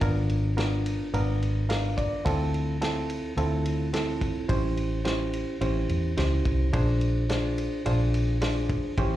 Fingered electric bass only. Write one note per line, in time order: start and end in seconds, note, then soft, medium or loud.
0.02 0.95 G#1 loud
1.13 2.07 G#1 loud
2.26 3.19 D2 loud
3.37 4.31 D2 loud
4.49 5.43 A1 loud
5.61 5.85 A1 medium
5.89 6.15 E2 medium
6.17 6.43 C#2 medium
6.45 6.71 C2 medium
6.73 7.67 A#1 loud
7.86 8.79 A#1 medium
8.98 9.16 A1 medium